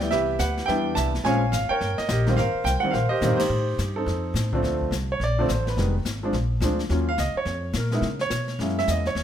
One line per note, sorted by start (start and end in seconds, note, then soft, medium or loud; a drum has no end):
0.00 0.10 D2 medium
0.00 0.38 E3 medium
0.00 0.38 G3 medium
0.00 0.38 B3 medium
0.00 0.39 E4 medium
0.00 0.13 G5 loud
0.00 snare soft
0.11 0.38 C2 medium
0.11 0.64 G4 medium
0.11 0.40 B4 medium
0.11 0.40 E5 loud
0.11 brush sweep medium
0.11 snare soft
0.39 0.67 D2 medium
0.39 0.67 B4 medium
0.39 0.66 F#5 medium
0.39 snare medium
0.39 hi-hat pedal medium
0.57 snare soft
0.66 0.95 E2 medium
0.66 1.10 E3 medium
0.66 1.10 G3 medium
0.66 1.11 B3 medium
0.66 1.21 B4 medium
0.66 0.95 E5 medium
0.66 0.93 G5 loud
0.66 brush sweep soft
0.66 snare soft
0.70 1.11 D4 medium
0.95 1.23 C2 loud
0.95 1.23 E5 medium
0.95 1.22 A5 loud
0.95 snare medium
0.95 hi-hat pedal medium
1.15 snare soft
1.24 1.52 A#1 medium
1.24 1.40 F3 medium
1.24 1.40 G#3 medium
1.24 1.40 C4 medium
1.24 1.41 C#4 medium
1.24 1.69 C#5 medium
1.24 1.50 F5 medium
1.24 1.54 G#5 loud
1.24 brush sweep soft
1.24 snare soft
1.52 1.69 G#1 medium
1.52 1.69 F5 loud
1.52 snare medium
1.52 hi-hat pedal medium
1.69 2.09 A#4 medium
1.69 2.23 C#5 medium
1.69 1.99 G5 loud
1.69 muted upright bass stroke soft
1.81 1.97 G1 medium
1.81 brush sweep soft
1.81 snare soft
1.98 2.07 D#5 medium
1.98 muted upright bass stroke soft
1.98 snare soft
2.09 2.36 A#1 loud
2.09 2.37 G4 medium
2.09 2.36 A#4 medium
2.09 2.35 D#5 medium
2.09 snare medium
2.09 hi-hat pedal medium
2.26 2.36 D#3 medium
2.26 2.37 G3 medium
2.26 2.37 A#3 medium
2.26 2.38 C4 medium
2.26 snare soft
2.36 2.53 G#1 medium
2.36 2.91 A#4 medium
2.36 2.91 C5 medium
2.36 2.63 F5 loud
2.36 brush sweep soft
2.36 snare soft
2.54 muted upright bass stroke soft
2.64 2.81 C2 medium
2.64 2.81 G5 loud
2.64 snare medium
2.64 hi-hat pedal medium
2.80 2.93 D#3 medium
2.80 2.93 G3 medium
2.80 2.93 A#3 medium
2.80 2.92 F#5 loud
2.85 2.94 C4 medium
2.91 3.10 A#1 medium
2.91 3.47 A#4 medium
2.91 3.09 C5 medium
2.91 3.10 F5 medium
2.91 brush sweep soft
2.91 snare soft
3.09 3.37 G4 medium
3.09 3.35 C5 medium
3.09 3.40 D#5 loud
3.09 muted upright bass stroke soft
3.21 3.31 A#2 medium
3.21 3.38 D#3 medium
3.21 3.38 G3 medium
3.21 3.39 A#3 medium
3.21 3.39 C4 medium
3.21 snare medium
3.21 hi-hat pedal medium
3.31 3.40 G#2 medium
3.37 3.49 G2 medium
3.37 3.92 D#4 medium
3.37 3.92 G4 medium
3.37 3.75 C5 medium
3.37 snare medium
3.37 ride medium
3.49 3.78 A2 medium
3.49 brush sweep medium
3.78 4.06 G2 medium
3.78 snare medium
3.78 hi-hat pedal medium
3.96 4.49 C4 medium
3.96 4.50 D#4 medium
3.96 4.49 A4 medium
4.06 4.33 F2 medium
4.06 brush sweep soft
4.06 snare soft
4.34 4.62 A2 medium
4.34 snare medium
4.34 hi-hat pedal medium
4.53 4.90 D3 medium
4.53 4.90 F3 medium
4.53 4.91 A3 medium
4.53 4.91 C4 medium
4.53 kick medium
4.63 4.90 D2 medium
4.63 brush sweep soft
4.63 snare soft
4.81 kick soft
4.91 5.19 C2 medium
4.91 snare medium
4.91 hi-hat pedal medium
5.12 5.21 C#5 medium
5.20 5.48 A#1 medium
5.20 5.49 D5 medium
5.20 brush sweep soft
5.20 snare soft
5.39 5.48 D3 medium
5.39 5.48 F3 medium
5.39 5.49 A3 medium
5.39 5.49 C4 medium
5.49 5.76 A1 medium
5.49 5.67 C5 medium
5.49 snare medium
5.49 hi-hat pedal medium
5.67 5.94 B4 medium
5.67 snare soft
5.77 6.04 F1 medium
5.77 5.93 D#3 soft
5.77 5.93 G3 soft
5.77 5.93 G#3 soft
5.77 5.94 B3 medium
5.77 brush sweep medium
5.77 snare soft
6.05 6.32 G#1 medium
6.05 snare medium
6.05 hi-hat pedal medium
6.23 6.33 F3 medium
6.23 6.33 G#3 medium
6.23 6.33 C4 medium
6.23 6.34 D4 medium
6.33 6.60 A#1 medium
6.33 brush sweep soft
6.33 snare soft
6.60 6.89 D2 medium
6.60 6.78 F3 medium
6.60 6.78 G#3 medium
6.60 6.78 C4 medium
6.60 6.78 D4 medium
6.60 snare medium
6.60 hi-hat pedal medium
6.79 snare soft
6.89 7.17 D#2 medium
6.89 7.06 F#3 medium
6.89 7.06 A#3 medium
6.89 7.06 C#4 medium
6.89 7.07 F4 medium
6.89 brush sweep medium
6.89 snare soft
7.09 7.19 F5 loud
7.18 7.34 C#2 medium
7.18 7.36 D#5 medium
7.18 snare medium
7.18 hi-hat pedal medium
7.35 7.73 C#5 medium
7.35 muted upright bass stroke soft
7.45 7.73 F2 medium
7.45 brush sweep soft
7.45 snare soft
7.73 8.01 A#2 medium
7.73 snare medium
7.73 hi-hat pedal medium
7.78 8.19 A#4 medium
7.91 8.02 G#3 medium
7.91 8.03 B3 medium
7.91 8.03 D#4 medium
7.91 8.04 E4 medium
7.91 snare soft
8.02 8.30 C#3 medium
8.02 brush sweep soft
8.02 snare soft
8.19 8.58 C#5 medium
8.19 snare soft
8.30 8.58 B2 medium
8.30 snare medium
8.30 hi-hat pedal medium
8.48 snare soft
8.59 8.87 F#2 medium
8.59 9.02 G#3 soft
8.59 9.03 A#3 soft
8.59 9.03 C#4 soft
8.59 9.03 E4 medium
8.59 brush sweep soft
8.59 snare soft
8.69 snare soft
8.79 8.89 E5 loud
8.79 snare soft
8.88 9.15 E2 medium
8.88 9.06 D#5 medium
8.88 snare medium
8.88 hi-hat pedal medium
9.05 9.23 C#5 medium
9.05 snare soft
9.15 9.23 D#2 medium
9.15 brush sweep soft
9.15 snare soft